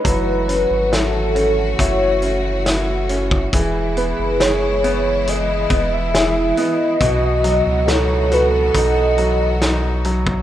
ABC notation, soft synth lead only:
X:1
M:4/4
L:1/16
Q:1/4=69
K:E
V:1 name="Soft synth lead"
B4 A4 c4 z4 | z2 B2 c4 d3 e3 d2- | d4 c2 B2 d6 z2 |]